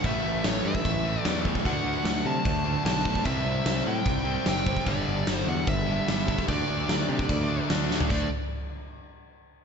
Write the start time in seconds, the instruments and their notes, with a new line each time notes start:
0.03 picked electric bass A1, overdriven electric guitar A2 E3 A3, lead electric guitar E5, kick, crash
0.25 picked electric bass A1
0.44 picked electric bass A1, lead electric guitar C#5, snare, crash
0.65 picked electric bass G2, lead electric guitar E5
0.75 kick
0.85 picked electric bass A1, kick, crash
1.04 overdriven electric guitar A2 E3 A3
1.21 picked electric bass E2, overdriven electric guitar A2, lead electric guitar D5, snare, crash
1.26 overdriven electric guitar E3 A3
1.44 overdriven electric guitar A2 E3 A3, kick
1.55 kick
1.64 picked electric bass D2, overdriven electric guitar D3 A3 D4, lead electric guitar F#5, kick, crash
1.85 picked electric bass D2
2.05 picked electric bass D2, snare, crash
2.25 picked electric bass C3, lead electric guitar A5
2.45 picked electric bass D2, kick, crash
2.64 overdriven electric guitar D3 A3 D4
2.83 picked electric bass B1, overdriven electric guitar D3 A3 D4, lead electric guitar A5, snare, crash
2.96 snare
3.05 overdriven electric guitar D3 A3 D4, kick
3.15 kick
3.23 picked electric bass C2, overdriven electric guitar C3 G3 C4, lead electric guitar E5, kick, crash
3.45 picked electric bass C2
3.66 picked electric bass C2, snare, crash
3.87 picked electric bass A2, lead electric guitar G5
4.05 picked electric bass C2, kick, crash
4.25 overdriven electric guitar C3 G3 C4
4.45 picked electric bass F#1, overdriven electric guitar C3 G3 C4, lead electric guitar G5, snare, crash
4.57 snare
4.66 overdriven electric guitar C3 G3 C4, kick
4.77 kick
4.85 picked electric bass G1, overdriven electric guitar G2 D3 G3, lead electric guitar D5, kick, crash
5.07 picked electric bass G1
5.27 picked electric bass G1, snare, crash
5.35 lead electric guitar C5
5.47 picked electric bass E2, lead electric guitar F#5
5.67 picked electric bass G1, lead electric guitar E5, kick, crash
5.86 overdriven electric guitar G2 D3 G3
6.07 picked electric bass G1, overdriven electric guitar G2 D3 G3, snare, crash
6.19 snare
6.27 overdriven electric guitar G2 D3 G3, kick
6.38 kick
6.47 picked electric bass D2, overdriven electric guitar D3 A3 D4, lead electric guitar D5, kick, crash
6.69 picked electric bass D2
6.89 picked electric bass D2, snare, crash
7.09 picked electric bass C3
7.19 kick
7.29 picked electric bass D2, kick, crash
7.48 overdriven electric guitar D3 A3 D4
7.68 picked electric bass D2, overdriven electric guitar D3 A3 D4, snare, crash
7.90 overdriven electric guitar D3 A3 D4, snare
8.00 floor tom
8.09 picked electric bass D2, overdriven electric guitar D3 A3 D4, lead electric guitar D5, kick, crash